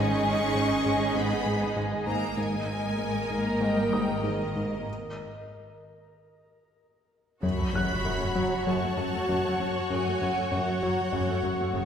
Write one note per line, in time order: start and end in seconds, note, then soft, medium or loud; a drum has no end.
0.00 2.33 G#1 medium
0.00 0.12 G#2 medium
0.00 2.33 G#3 medium
0.00 1.13 C#4 medium
0.00 2.33 D#4 medium
0.00 2.34 G#4 medium
0.00 2.38 G#4 soft
0.00 2.34 D#5 medium
0.00 2.38 G#5 medium
0.00 1.16 C#6 loud
0.24 0.42 G#2 medium
0.55 0.73 G#2 medium
0.86 1.04 G#2 medium
1.15 1.34 G#2 medium
1.15 1.76 B3 medium
1.15 1.77 B5 medium
1.46 1.64 G#2 medium
1.77 1.95 G#2 medium
2.06 2.25 G#2 medium
2.06 2.35 A#3 medium
2.06 2.35 A#5 medium
2.36 4.84 G#1 medium
2.36 2.56 G#2 medium
2.36 3.60 G#3 medium
2.36 4.83 A#3 medium
2.36 4.87 A#4 soft
2.36 4.84 A#4 medium
2.36 4.83 D#5 medium
2.36 4.84 D#5 medium
2.36 3.60 G#5 medium
2.36 4.87 A#5 medium
2.68 2.86 G#2 soft
2.99 3.17 G#2 medium
3.30 3.49 G#2 medium
3.60 3.79 G#2 medium
3.60 4.23 G3 medium
3.60 4.24 G5 medium
3.93 4.11 G#2 soft
3.93 4.84 D#6 soft
4.23 4.43 G#2 soft
4.23 4.87 D#3 soft
4.23 4.88 D#5 medium
4.56 4.75 G#2 soft
7.42 7.50 F#1 medium
7.42 7.62 F#2 medium
7.42 7.50 F#2 medium
7.42 7.48 C#3 medium
7.42 11.85 F#4 soft
7.42 11.85 F#4 medium
7.42 11.85 C#5 medium
7.42 11.85 F#5 medium
7.42 8.63 B5 medium
7.42 11.85 C#6 soft
7.42 10.42 F#6 soft
7.42 sub drop medium
7.58 7.65 F#2 soft
7.58 7.64 A3 soft
7.74 7.81 F#1 soft
7.74 7.93 F#2 medium
7.74 7.80 F#2 soft
7.74 7.80 F#3 soft
7.74 9.57 F#6 soft
7.89 7.96 F#2 soft
7.89 7.96 A3 soft
8.04 8.12 F#1 medium
8.04 8.24 F#2 medium
8.04 8.12 F#2 medium
8.04 8.11 C#3 medium
8.20 8.27 F#2 soft
8.20 8.26 A3 soft
8.35 8.43 F#1 soft
8.35 8.42 F#2 soft
8.35 8.41 F#3 soft
8.35 8.54 F#3 medium
8.66 8.74 F#1 medium
8.66 8.85 F#2 medium
8.66 8.73 F#2 medium
8.66 8.73 C#3 medium
8.66 9.91 A5 medium
8.82 8.89 F#2 soft
8.82 8.88 A3 soft
8.97 9.05 F#1 soft
8.97 9.16 F#2 medium
8.97 9.05 F#2 soft
8.97 9.04 F#3 soft
9.13 9.20 F#2 soft
9.13 9.20 A3 soft
9.28 9.36 F#1 medium
9.28 9.35 F#2 medium
9.28 9.48 F#2 medium
9.28 9.35 C#3 medium
9.44 9.50 F#2 soft
9.44 9.51 A3 medium
9.59 9.67 F#1 soft
9.59 9.66 F#2 soft
9.59 9.78 F#2 medium
9.59 9.66 F#3 soft
9.90 9.98 F#1 medium
9.90 9.96 F#2 medium
9.90 10.09 F#2 medium
9.90 9.97 C#3 medium
9.90 10.52 G#5 medium
10.06 10.12 F#2 soft
10.06 10.13 A3 soft
10.21 10.28 F#1 soft
10.21 10.27 F#2 soft
10.21 10.40 F#2 medium
10.21 10.27 F#3 soft
10.37 10.43 F#2 soft
10.37 10.43 A3 soft
10.42 11.41 G6 soft
10.52 10.59 F#1 medium
10.52 10.58 F#2 medium
10.52 10.70 F#2 medium
10.52 10.58 C#3 medium
10.52 11.85 F#5 medium
10.67 10.73 F#2 soft
10.67 10.73 A3 soft
10.82 10.89 F#1 soft
10.82 10.88 F#2 soft
10.82 11.01 F#3 medium
10.82 10.89 F#3 soft
11.13 11.20 F#1 medium
11.13 11.31 F#2 medium
11.13 11.19 F#2 medium
11.13 11.20 C#3 medium
11.29 11.35 F#2 soft
11.29 11.35 A3 soft
11.43 11.50 F#1 soft
11.43 11.61 F#2 medium
11.43 11.50 F#2 soft
11.43 11.50 F#3 soft
11.60 11.66 F#2 soft
11.60 11.66 A3 soft
11.74 11.80 F#1 medium
11.74 11.85 F#2 medium
11.74 11.81 F#2 medium
11.74 11.80 C#3 medium